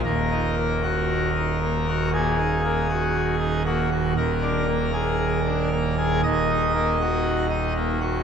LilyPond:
<<
  \new Staff \with { instrumentName = "Pipe organ" } { \time 4/4 \key ees \minor \tempo 4 = 59 << { bes'2 aes'4. ges'8 | bes'2 ees''4. r8 | } \\ { ees,16 ees'16 bes16 ges'8 ees'16 bes16 ges'16 bes,16 ees'16 bes16 ges'8 ees'16 bes16 ges'16 | ees,16 d'16 bes16 aes'8 d'16 bes16 aes'16 ees,16 ees'16 bes16 ges'8 ees'16 bes16 ges'16 | } >> }
  \new Staff \with { instrumentName = "Pipe organ" } { \clef bass \time 4/4 \key ees \minor ees,,1 | ees,,2 ees,,2 | }
>>